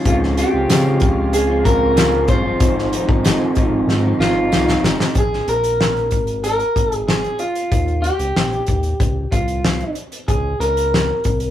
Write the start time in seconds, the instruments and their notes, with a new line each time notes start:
Already playing: analog synth pad C#3
0.05 analog synth bass C#2, clean electric guitar C#3 G#3 C4 F4, analog synth pad F3 G#3 C4 F4, kick, closed hi-hat
0.23 snare
0.37 clean electric guitar C#3 G#3 C4 F4 G4, closed hi-hat
0.53 analog synth bass C#2, clean electric guitar G#3 C4 F4
0.69 analog synth bass C#3, clean electric guitar C#3 G#3 C4 F4, snare, closed hi-hat, tambourine
1.00 analog synth bass C#2, clean electric guitar C#3 G#3 C4, kick, closed hi-hat
1.04 clean electric guitar F4
1.33 clean electric guitar G#4, closed hi-hat
1.47 clean electric guitar G#3 C4 F4
1.63 clean electric guitar C#3 G#3 C4 F4 A#4, kick, closed hi-hat
1.96 clean electric guitar C#3 G#3 C4 F4, snare, closed hi-hat, tambourine
2.27 analog synth bass G1, clean electric guitar C#3 G#3 C4 F4 C5, kick, closed hi-hat
2.44 clean electric guitar G#3 C4 F4
2.59 analog synth bass G#1, clean electric guitar G#2 F3 C4 D#4, analog synth pad D#3 G#3, kick, closed hi-hat
2.79 snare
2.91 clean electric guitar G#2 F3 C4 D#4, closed hi-hat
3.07 analog synth bass G1, clean electric guitar F3 C4 D#4, kick
3.24 clean electric guitar G#2 F3 C4 D#4, snare, closed hi-hat, tambourine
3.55 analog synth bass G#1, clean electric guitar G#2 F3 C4 D#4, kick, closed hi-hat
3.87 analog synth bass G#2, snare
4.03 clean electric guitar F3 C4 D#4
4.19 analog synth bass G#1, clean electric guitar G#2 F3 C4 F4, snare
4.23 clean electric guitar D#4
4.51 analog synth bass C2, clean electric guitar G#2 F3 C4 D#4, snare, tambourine
4.68 snare
4.83 analog synth bass G#1, clean electric guitar G#2 F3 C4 D#4, snare
4.98 clean electric guitar F3 C4 D#4, snare
5.15 analog synth bass A#1, clean electric guitar G#4, kick, closed hi-hat
5.34 snare
5.47 analog synth bass A#1, clean electric guitar A#4, closed hi-hat
5.64 closed hi-hat
5.81 snare
5.96 closed hi-hat
6.11 analog synth bass G#1, kick, closed hi-hat
6.27 closed hi-hat
6.44 clean electric guitar A#4, closed hi-hat
6.59 closed hi-hat
6.76 analog synth bass G#1, kick, closed hi-hat
6.92 clean electric guitar G#4, closed hi-hat
7.08 clean electric guitar G#4, snare
7.24 closed hi-hat
7.39 clean electric guitar F4, closed hi-hat
7.55 closed hi-hat
7.72 analog synth bass D#2, kick, closed hi-hat
7.88 closed hi-hat
8.02 clean electric guitar G4, closed hi-hat
8.19 analog synth bass C#2, closed hi-hat
8.35 analog synth bass A#1, snare
8.53 closed hi-hat
8.67 analog synth bass D#2, kick, closed hi-hat
8.83 closed hi-hat
9.00 analog synth bass C#2, kick, closed hi-hat
9.32 analog synth bass C2, clean electric guitar F4, kick, closed hi-hat
9.48 closed hi-hat
9.64 snare
9.80 closed hi-hat
9.95 closed hi-hat
10.12 closed hi-hat
10.28 analog synth bass C#2, clean electric guitar G#4, kick, closed hi-hat
10.60 analog synth bass C#2, clean electric guitar A#4, closed hi-hat
10.77 closed hi-hat
10.94 snare
11.24 analog synth bass C2, kick, closed hi-hat
11.40 closed hi-hat